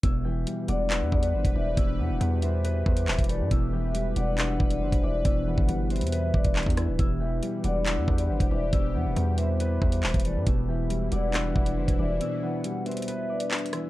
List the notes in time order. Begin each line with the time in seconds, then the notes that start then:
0.03 E1 B2 E3 E4 G4 B4 E5, kick, closed hi-hat
0.25 E3 G4 E5 G5
0.47 G3, closed hi-hat
0.68 E1 B3 D4 D5 F#5, closed hi-hat
0.90 E4 B4 E5, clap, closed hi-hat
1.01 E2
1.11 E2 D4 D5, kick
1.23 closed hi-hat
1.34 G1 C4 C5
1.45 E1, kick, closed hi-hat
1.56 E1 E3 D4 D5 E5
1.77 E1 B2 E4 E5, kick, closed hi-hat
1.99 E2 E3 B3 B4 F#5
2.10 E1
2.21 E2 G3, closed hi-hat
2.42 B3 C4 C5 E5, closed hi-hat
2.64 B3 B4, closed hi-hat
2.86 E2 C4 C5, kick
2.97 closed hi-hat
3.07 D1 B3 B4, clap, closed hi-hat
3.13 closed hi-hat
3.19 E1, kick, closed hi-hat
3.24 closed hi-hat
3.29 E3 A3 A4 D5, closed hi-hat
3.40 G2
3.51 E1 B2 E4 B4 E5, kick, closed hi-hat
3.73 E3 G4 E5 G5
3.94 G3, closed hi-hat
4.16 E1 B3 D4 D5 F#5, closed hi-hat
4.38 E4 B4 E5, clap, closed hi-hat
4.60 E1 D4 D5, kick
4.71 closed hi-hat
4.82 F#1 C4 C5
4.92 E1, kick, closed hi-hat
5.03 E1 E3 D4 D5 E5
5.25 E1 B2 E4 E5, kick, closed hi-hat
5.47 E3 B3 B4 F#5
5.58 G1, kick
5.69 G1 G3, closed hi-hat
5.90 B3 C4 C5 E5, closed hi-hat
5.96 closed hi-hat
6.01 E2, closed hi-hat
6.07 closed hi-hat
6.12 B3 B4, closed hi-hat
6.34 E1 D4 D5, kick
6.44 E1, kick, closed hi-hat
6.56 clap, closed hi-hat
6.63 E2, kick, closed hi-hat
6.70 closed hi-hat
6.77 E3 E4 E5, cross-stick, closed hi-hat
6.88 D1
6.99 E1 B2 E4 G4 E5, kick, closed hi-hat
7.20 E3 G4 E5 G5
7.43 G3, closed hi-hat
7.64 E1 B3 D4 D5 F#5, closed hi-hat
7.86 E4 B4 E5, clap, closed hi-hat
7.97 E2
8.07 E2 D4 D5, kick
8.18 closed hi-hat
8.29 G1 C4 C5
8.40 E1, kick, closed hi-hat
8.51 E1 E3 D4 D5 E5
8.72 E1 B2 E4 E5, kick, closed hi-hat
8.94 E2 E3 B3 B4 F#5
9.06 E1
9.16 E2 G3, closed hi-hat
9.38 B3 C4 C5 E5, closed hi-hat
9.60 B3 B4, closed hi-hat
9.82 E2 C4 C5, kick
9.92 closed hi-hat
10.03 D1 B3 B4, clap, closed hi-hat
10.09 closed hi-hat
10.14 E1, kick, closed hi-hat
10.20 closed hi-hat
10.24 E3 A3 A4 D5, closed hi-hat
10.36 G2
10.47 E1 B2 E3 E4 E5, kick, closed hi-hat
10.69 E3 G4 E5 G5
10.90 G3, closed hi-hat
11.12 E1 B3 D4 D5 F#5, closed hi-hat
11.34 E4 B4 E5, clap, closed hi-hat
11.56 E1 D4 D5, kick
11.66 closed hi-hat
11.77 F#1 C4 C5
11.88 E1, kick, closed hi-hat
11.99 E1 E3 D4 D5 E5
12.21 B2 E4 E5, closed hi-hat
12.42 E3 B3 B4 F#5
12.64 G3, closed hi-hat
12.86 B3 C4 C5 E5, closed hi-hat
12.91 closed hi-hat
12.97 closed hi-hat
13.02 closed hi-hat
13.08 B3 B4, closed hi-hat
13.29 D4 D5
13.40 closed hi-hat
13.51 clap, closed hi-hat
13.58 closed hi-hat
13.66 closed hi-hat
13.73 E3 E4 E5, cross-stick, closed hi-hat